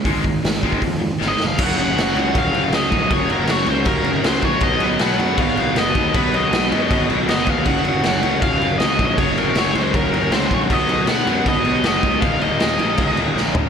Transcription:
0.05 G#1 G#2 D#3 G#3, kick, open hi-hat
0.24 G#1 G#2 D#3, kick
0.43 G#1 G#2 D#3, snare, open hi-hat
0.63 G#1 G#2 D#3 G#3, kick
0.72 kick
0.81 F2 G#2 D#3, kick, open hi-hat
0.99 G#2 D#3
1.19 G#1 G#2 D#3 G#3, snare
1.28 D#5
1.39 F1 G#2 D#3, snare
1.47 F5
1.57 F#1 F#2 C#3 F#3, kick, crash
1.63 F#5
1.76 F#1 F#2 C#3 F#3, crash
1.94 F#1 F#2 C#3 F#3, crash
1.99 F#5, snare
2.14 C#2 F#2 C#3 F#3, crash
2.33 D#1 F#2 C#3 F#3, kick, crash
2.38 F5
2.53 F#1 F#2 C#3 F#3, crash
2.72 C#2 F#2 C#3 F#3 D#5, snare, crash
2.92 A#1 F#2 C#3 F#3, kick, crash
3.10 F#1 F#2 C#3 F#3 C#5, kick, crash
3.28 F#1 F#2 C#3 F#3 A#4, crash
3.47 F#1 F#2 C#3 F#3 C#5, snare, crash
3.66 C#2 F#2 C#3 F#3 C5, crash
3.85 D#1 F#2 C#3 F#3 A#4, kick, crash
4.04 F#1 F#2 C#3 F#3, crash
4.24 C#2 F#2 C#3 F#3 C5, snare, crash
4.42 A#1 F#2 C#3 F#3 C#5, kick, crash
4.60 B1 B2 F#3 B3 D#5, kick, crash
4.80 B1 B2 F#3 B3, crash
4.98 B1 B2 F#3 B3 F#5, snare, crash
5.16 F#2 B2 F#3 B3, crash
5.36 G#1 B2 F#3 B3, kick, crash
5.40 F5
5.55 B1 B2 F#3 B3, crash
5.75 F#1 B2 F#3 B3 D#5, snare, crash
5.95 D#2 B2 F#3 B3, kick, crash
6.13 B1 B2 F#3 B3 B4, kick, crash
6.32 B1 B2 F#3 B3 D#5, crash
6.52 B1 B2 F#3 B3, snare, crash
6.70 F#2 B2 F#3 B3, crash
6.89 G#1 B2 F#3 B3, kick, crash
7.09 B1 B2 F#3 B3, crash
7.28 F#1 B2 F#3 B3 D#5, snare, crash
7.46 D#2 B2 F#3 B3 F5, kick, crash
7.65 F#1 F#2 C#3 F#3 F#5, kick, crash
7.85 F#1 F#2 C#3 F#3, crash
8.02 F#1 F#2 C#3 F#3 F#5, snare, crash
8.23 C#2 F#2 C#3 F#3, crash
8.41 D#1 F#2 C#3 F#3 F5, kick, crash
8.59 F#1 F#2 C#3 F#3, crash
8.79 C#2 F#2 C#3 F#3 D#5, snare, crash
8.98 A#1 F#2 C#3 F#3, kick, crash
9.17 F#1 F#2 C#3 F#3 C#5, kick, crash
9.37 F#1 F#2 C#3 F#3 A#4, crash
9.55 F#1 F#2 C#3 F#3 C#5, snare, crash
9.74 C#2 F#2 C#3 F#3 C5, crash
9.93 D#1 F#2 C#3 F#3 A#4, kick, crash
10.11 F#1 F#2 C#3 F#3, crash
10.31 C#2 F#2 C#3 F#3 C5, snare, crash
10.50 A#1 F#2 C#3 F#3 C#5, kick, crash
10.69 B1 B2 F#3 B3 D#5, kick, crash
10.89 B1 B2 F#3 B3, crash
11.07 B1 B2 F#3 B3 F#5, snare, crash
11.27 F#2 B2 F#3 B3, crash
11.46 G#1 B2 F#3 B3 D#5, kick, crash
11.64 B1 B2 F#3 B3, crash
11.84 F#1 B2 F#3 B3 D#5, snare, crash
12.03 C#2 B2 F#3 B3, kick, crash
12.21 D#1 D#2 A#2 D#3 F5, kick, crash
12.40 D#1 D#2 A#2 D#3 D#5, crash
12.59 D#1 D#2 A#2 D#3, snare, crash
12.78 A#1 D#2 A#2 D#3, crash
12.97 C#2 D#2 A#2 D#3, kick, crash
13.16 D#1 D#2 A#2 D#3, crash
13.35 A#1 D#2 A#2 D#3, snare
13.54 G1 D#2 A#2 D#3, floor tom

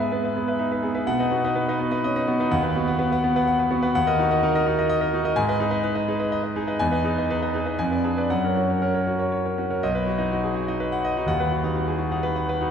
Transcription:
Already playing: G#2 B3 G#4
0.00 B4 E5
0.12 B3 B4
0.24 B4 E5
0.36 B3 G#4
0.48 B4 E5
0.59 D#4 E5
0.72 B4 E5
0.83 B3 G#4
0.95 B4 E5
1.07 B2 F#5
1.19 D#4 B4 D#5
1.31 B3 F#4
1.44 D#4 B4 D#5
1.55 B3 B4
1.68 D#4 B4 D#5
1.79 B3 F#4
1.91 D#4 B4 D#5
2.04 C#4 D#5
2.16 D#4 B4 D#5
2.27 B3 F#4
2.40 D#4 B4 D#5
2.51 D#2 F#5
2.63 B4 F#5
2.76 B3 F#4
2.88 B4 F#5
2.99 B3 B4
3.12 B4 F#5
3.24 B3 F#4
3.36 B4 F#5
3.48 F#5
3.59 B4 F#5
3.70 B3 F#4
3.83 B4 F#5
3.95 D#2 F#5
4.07 A#4 D#5
4.19 D#4 F#4
4.31 A#4 D#5
4.43 D#4 A#4
4.55 A#4 D#5
4.67 D#4 F#4
4.78 A#4 D#5
4.90 D#5
5.01 A#4 D#5
5.13 D#4 F#4
5.25 A#4 D#5
5.36 G#2 G#5
5.49 B4 D#5
5.60 D#4 G#4
5.71 B4 D#5
5.84 D#4 B4
5.95 B4 D#5
6.08 D#4 G#4
6.20 B4 D#5
6.32 D#5
6.43 B4 D#5
6.56 D#4 G#4
6.68 B4 D#5
6.79 E2 G#5
6.92 B4 D#5
7.04 D#4 G#4
7.18 B4 D#5
7.30 D#4 B4
7.42 B4 D#5
7.54 D#4 G#4
7.65 B4 D#5
7.79 F2 G#5
7.91 B4 D5
8.04 D4 G#4
8.17 B4 D5
8.30 F#2 F#5
8.44 A#4 C#5
8.56 C#4 F#4
8.69 A#4 C#5
8.82 C#4 A#4
8.94 A#4 C#5
9.07 C#4 F#4
9.19 A#4 C#5
9.32 C#5
9.45 A#4 C#5
9.58 C#4 F#4
9.70 A#4 C#5
9.83 B1 D#5
9.95 B4
10.06 F#4
10.18 D#4 D#5
10.32 F#4
10.43 G#4
10.55 F#4
10.68 D#4 D#5
10.80 B4
10.92 F#5
11.05 D#5
11.17 D#4 F#4
11.26 D#1 D#2 F#5
11.40 B4
11.51 F#4
11.64 D#4 F#5
11.76 F#4
11.87 G#4
11.98 F#4
12.12 D#4 F#5
12.23 B4
12.36 F#5
12.49 B4
12.61 D#4 F#4

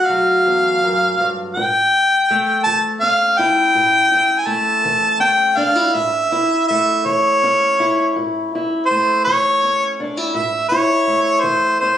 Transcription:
Already playing: A3 F#4
0.06 F#3 F5
0.46 E2
0.83 F#2
1.19 G2
1.55 A2 G5
2.31 A3
2.64 E3 A5
3.00 C#4 F5
3.38 E4 G5
3.74 A2
4.12 E4
4.39 G#5
4.46 A3 A5
4.85 E3
5.20 C#4 G5
5.57 D4 F5
5.75 E4
5.94 A2 E5
6.32 E4
6.68 A3 E5
7.05 E3 C#5
7.43 C#4
7.80 E4
8.16 A2
8.55 E4
8.86 C5
8.91 A3
9.24 E3 C#5
9.64 C#4
10.00 D4
10.17 E4
10.33 A2 E5
10.69 E4 C#5
11.07 A3
11.41 E3 C5
11.80 C#4 C5

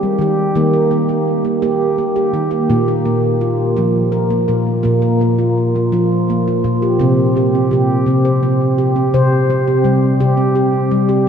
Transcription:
0.03 G3
0.19 D#3 G4
0.55 D#3 A#3
0.73 A#4
0.91 A#3
1.09 G4
1.45 A#3
1.62 A#3 G4
1.98 A#3
2.16 G4
2.34 D#3 A#3
2.51 G4
2.70 A#2 A#3
2.88 A#4
3.05 A#3
3.41 F4
3.77 F3 A#3
4.12 A#4
4.30 A#3
4.48 A#2 A#4
4.83 A#2 A#3
5.02 A#4
5.21 A#3
5.39 F4
5.76 A#3
5.92 F3 F4
6.30 A#3
6.48 F4
6.64 A#2 A#3
6.82 G4
6.99 C3 C4
7.37 G4
7.55 C4
7.71 C3 G4
8.06 C3 C4
8.25 C5
8.43 C4
8.78 G4
8.96 C4
9.14 C3 C5
9.50 C4
9.67 G4
9.84 C3 G3
10.20 C3 G4
10.37 C4
10.55 G4
10.91 G3
11.09 G4

